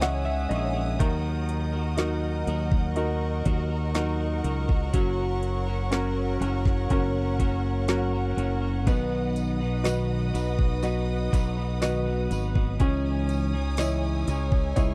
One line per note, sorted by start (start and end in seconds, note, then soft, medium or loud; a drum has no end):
0.00 0.47 C#2 medium
0.00 0.26 C#3 medium
0.00 0.26 E3 medium
0.00 0.26 G#3 medium
0.00 0.95 C#4 medium
0.00 0.26 C#4 medium
0.00 0.25 D#4 medium
0.00 1.02 E4 soft
0.00 0.24 G#4 medium
0.00 0.95 C#5 medium
0.00 1.02 C#5 medium
0.00 0.49 D#5 soft
0.00 0.23 E5 medium
0.00 0.24 F#5 medium
0.00 0.96 G#5 medium
0.00 1.02 G#5 medium
0.00 2.92 D#6 medium
0.00 snare loud
0.00 closed hi-hat medium
0.00 downlifter medium
0.25 0.48 G#3 soft
0.25 0.50 C#4 soft
0.25 0.51 D#4 soft
0.25 0.50 G#4 soft
0.25 0.48 E5 medium
0.49 0.96 A#1 medium
0.49 0.75 G#3 medium
0.49 0.75 C#4 medium
0.49 0.74 D#4 medium
0.49 0.73 G#4 medium
0.49 0.96 D#5 medium
0.49 closed hi-hat medium
0.74 0.99 G#3 soft
0.74 1.00 C#4 medium
0.74 0.99 D#4 medium
0.74 0.99 G#4 medium
0.98 2.44 D#2 medium
0.98 1.73 D#3 medium
0.98 4.89 D#3 medium
0.98 1.74 F#3 medium
0.98 1.74 D#4 medium
0.98 1.73 F#4 medium
0.98 8.82 A#4 medium
0.98 1.72 A#4 medium
0.98 4.88 D#5 medium
0.98 12.76 F#5 medium
0.98 kick loud
0.98 closed hi-hat medium
1.49 closed hi-hat medium
1.73 1.98 D#4 soft
1.73 1.98 F#4 medium
1.73 1.98 A#4 medium
1.97 2.47 D#3 medium
1.97 2.46 F#3 medium
1.97 2.93 D#4 soft
1.97 2.47 D#4 medium
1.97 2.93 F#4 soft
1.97 2.48 F#4 medium
1.97 2.94 A#4 medium
1.97 2.48 A#4 medium
1.97 snare medium
1.97 closed hi-hat medium
2.47 3.42 D#2 medium
2.47 2.95 F#3 medium
2.47 2.96 D#4 medium
2.47 2.97 F#4 medium
2.47 2.97 A#4 medium
2.47 closed hi-hat medium
2.72 kick loud
2.96 3.44 F#3 medium
2.96 3.92 D#4 soft
2.96 3.45 D#4 medium
2.96 3.92 F#4 soft
2.96 3.46 F#4 medium
2.96 3.92 A#4 medium
2.96 3.47 A#4 medium
2.96 8.82 C#6 medium
2.96 closed hi-hat medium
3.45 4.40 D#2 medium
3.45 3.70 F#3 medium
3.45 3.71 D#4 medium
3.45 3.70 F#4 medium
3.45 3.69 A#4 medium
3.45 kick medium
3.45 closed hi-hat medium
3.70 3.95 D#4 soft
3.70 3.95 F#4 soft
3.70 3.95 A#4 medium
3.94 4.44 D#3 medium
3.94 4.43 F#3 medium
3.94 4.90 D#4 medium
3.94 4.44 D#4 medium
3.94 4.90 F#4 soft
3.94 4.45 F#4 medium
3.94 4.90 A#4 medium
3.94 4.45 A#4 medium
3.94 snare loud
3.94 closed hi-hat medium
4.44 4.90 C#2 medium
4.44 4.69 F#3 medium
4.44 4.69 D#4 medium
4.44 4.68 F#4 medium
4.44 4.67 A#4 medium
4.44 closed hi-hat medium
4.68 4.93 D#4 soft
4.68 4.93 F#4 medium
4.68 4.93 A#4 medium
4.68 kick medium
4.93 6.37 F#1 medium
4.93 5.67 F#3 medium
4.93 8.83 F#3 medium
4.93 5.67 C#4 medium
4.93 5.67 F#4 medium
4.93 5.65 A#4 medium
4.93 8.82 C#5 medium
4.93 kick loud
4.93 closed hi-hat medium
5.43 closed hi-hat medium
5.67 5.91 C#4 soft
5.67 5.92 F#4 medium
5.67 5.91 A#4 medium
5.91 6.39 F#3 medium
5.91 6.87 C#4 soft
5.91 6.40 C#4 medium
5.91 6.87 F#4 soft
5.91 6.41 F#4 medium
5.91 6.88 A#4 medium
5.91 6.41 A#4 medium
5.91 snare loud
5.91 closed hi-hat medium
6.40 6.87 F#1 medium
6.40 6.88 F#3 medium
6.40 6.89 C#4 medium
6.40 6.90 F#4 medium
6.40 6.91 A#4 medium
6.40 closed hi-hat medium
6.65 kick medium
6.65 snare soft
6.89 8.34 F#1 loud
6.89 7.38 F#3 medium
6.89 7.39 C#4 medium
6.89 7.86 C#4 soft
6.89 7.86 F#4 soft
6.89 7.40 F#4 medium
6.89 7.86 A#4 medium
6.89 7.40 A#4 medium
6.89 kick medium
6.89 closed hi-hat medium
7.39 7.87 F#3 medium
7.39 7.88 C#4 medium
7.39 7.88 F#4 medium
7.39 7.89 A#4 medium
7.39 kick medium
7.39 closed hi-hat medium
7.88 8.13 F#3 medium
7.88 8.84 C#4 soft
7.88 8.13 C#4 medium
7.88 8.84 F#4 soft
7.88 8.13 F#4 medium
7.88 8.84 A#4 medium
7.88 8.12 A#4 medium
7.88 snare loud
7.88 closed hi-hat medium
8.13 8.37 C#4 soft
8.13 8.38 F#4 soft
8.13 8.38 A#4 medium
8.37 8.87 F#1 medium
8.37 8.62 F#3 medium
8.37 8.62 C#4 medium
8.37 8.62 F#4 medium
8.37 8.60 A#4 medium
8.37 closed hi-hat medium
8.62 8.87 C#4 soft
8.62 8.87 F#4 soft
8.62 8.87 A#4 medium
8.86 10.30 B1 medium
8.86 9.60 B2 medium
8.86 9.61 D#3 medium
8.86 9.61 F#3 medium
8.86 12.76 B3 medium
8.86 9.61 B3 medium
8.86 9.60 D#4 medium
8.86 12.76 B4 medium
8.86 9.59 B4 medium
8.86 12.76 D#5 medium
8.86 12.76 D#6 medium
8.86 kick loud
8.86 closed hi-hat medium
8.86 tambourine soft
9.36 closed hi-hat medium
9.36 tambourine soft
9.60 9.85 F#3 soft
9.60 9.85 B3 soft
9.60 9.85 D#4 medium
9.60 9.85 B4 soft
9.83 10.34 B2 medium
9.83 10.35 D#3 medium
9.83 10.32 F#3 medium
9.83 10.33 B3 medium
9.83 10.34 D#4 medium
9.83 10.80 F#4 soft
9.83 10.80 B4 soft
9.83 10.35 B4 medium
9.83 10.80 D#5 soft
9.83 snare medium
9.83 closed hi-hat medium
9.83 tambourine medium
10.34 11.29 B1 medium
10.34 10.82 F#3 medium
10.34 10.83 B3 medium
10.34 10.84 D#4 medium
10.34 10.84 B4 medium
10.34 closed hi-hat medium
10.34 tambourine soft
10.59 kick loud
10.82 11.31 F#3 medium
10.82 11.32 B3 medium
10.82 11.33 D#4 medium
10.82 11.78 F#4 soft
10.82 11.79 B4 soft
10.82 11.34 B4 medium
10.82 11.79 D#5 medium
10.82 closed hi-hat medium
10.82 tambourine medium
11.32 12.27 B1 medium
11.32 11.57 F#3 medium
11.32 11.57 B3 medium
11.32 11.56 D#4 medium
11.32 11.56 B4 medium
11.32 kick medium
11.32 closed hi-hat medium
11.32 tambourine medium
11.57 11.81 F#3 soft
11.57 11.81 B3 soft
11.57 11.82 D#4 medium
11.57 11.82 B4 medium
11.81 12.06 B2 medium
11.81 12.06 D#3 medium
11.81 12.07 F#3 medium
11.81 12.07 B3 medium
11.81 12.05 D#4 medium
11.81 12.77 F#4 soft
11.81 12.77 B4 soft
11.81 12.04 B4 medium
11.81 12.77 D#5 medium
11.81 snare medium
11.81 closed hi-hat medium
11.81 tambourine medium
12.06 12.29 F#3 soft
12.06 12.30 B3 soft
12.06 12.31 D#4 soft
12.06 12.31 B4 medium
12.30 12.77 G#1 medium
12.30 12.55 F#3 medium
12.30 12.55 B3 medium
12.30 12.54 D#4 medium
12.30 12.53 B4 medium
12.30 closed hi-hat medium
12.30 tambourine soft
12.54 12.79 F#3 medium
12.54 12.80 B3 soft
12.54 12.79 D#4 medium
12.54 12.80 B4 medium
12.54 kick medium
12.79 14.24 C#2 loud
12.79 13.53 C#3 medium
12.79 13.54 E3 medium
12.79 13.54 G#3 medium
12.79 13.54 C#4 medium
12.79 14.94 C#4 medium
12.79 13.53 D#4 medium
12.79 13.52 G#4 medium
12.79 14.94 C#5 medium
12.79 14.94 G#5 medium
12.79 14.75 D#6 medium
12.79 kick loud
12.79 closed hi-hat medium
13.29 closed hi-hat medium
13.29 tambourine soft
13.53 13.78 G#3 soft
13.53 13.78 C#4 soft
13.53 13.78 D#4 medium
13.53 13.78 G#4 medium
13.77 14.28 C#3 medium
13.77 14.28 E3 medium
13.77 14.25 G#3 medium
13.77 14.27 C#4 medium
13.77 14.28 D#4 medium
13.77 14.75 E4 medium
13.77 14.28 G#4 medium
13.77 14.74 C#5 soft
13.77 14.74 D#5 soft
13.77 snare medium
13.77 closed hi-hat medium
13.77 tambourine medium
14.27 14.73 C#2 medium
14.27 14.75 G#3 medium
14.27 14.76 C#4 medium
14.27 14.76 D#4 medium
14.27 14.77 G#4 medium
14.27 closed hi-hat medium
14.27 tambourine soft
14.52 kick loud
14.75 14.94 C#2 medium
14.75 14.94 G#3 medium
14.75 14.94 C#4 medium
14.75 14.94 D#4 medium
14.75 14.94 E4 medium
14.75 14.94 G#4 medium
14.75 14.94 C#5 soft
14.75 14.94 D#5 soft
14.75 14.94 C#6 medium
14.75 kick medium
14.75 closed hi-hat medium
14.75 tambourine medium